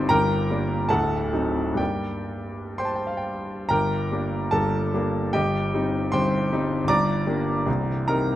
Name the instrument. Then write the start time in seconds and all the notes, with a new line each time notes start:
grand piano
Already playing: G1 G2 G3 C4 D#4 G4 C5 D#5 G5 C6
0.09 G1 G2 A#4 G5 A#5
0.50 G3 A#3 D4
0.89 D1 D2 A4 F#5 A5
1.33 F#3 C4 D#4
1.74 G2 G3 A#3 D4 G5
1.79 G4 D5
2.78 C5 G5 C6
2.85 A5
2.96 G5
3.07 F5
3.17 G5
3.69 G1 G2 A#4 G5 A#5
4.12 G3 A#3 D4
4.51 G1 G2 A4 A5
4.94 G3 A#3 D4
5.33 G1 G2 G4 D#5 G5
5.74 G3 C4 D#4
6.12 G1 G2 C5 G5 C6
6.52 G3 C4 D#4
6.84 G1
6.88 G2 D5 A#5 D6
7.27 G3 A#3 D4
7.66 C1 C2
8.08 G3 C4 D#4 A#4 A#5